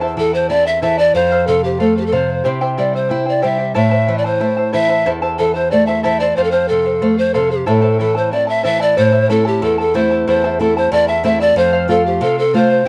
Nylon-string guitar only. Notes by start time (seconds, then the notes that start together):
Already playing: E2
0.17 E3
0.50 C4
0.83 E3
1.15 F2
1.48 C3
1.80 A3
2.13 C3
2.46 C3
2.78 G3
3.11 E4
3.44 G3
3.76 A2
4.08 E3
4.41 A3
4.74 E3
5.06 E2
5.40 E3
5.73 A3
6.05 E3
6.38 F2
6.71 C3
7.02 A3
7.35 C3
7.67 A2
8.01 E3
8.33 C4
8.65 E3
8.98 A2
9.29 A3 C4 E4
9.62 E2
9.94 A3 C4 E4
10.28 E2
10.59 A3 C4 E4
10.92 E2
11.23 A3 C4 E4
11.56 F2
11.88 A3 C4 F4
12.21 C3
12.54 A3 C4 F4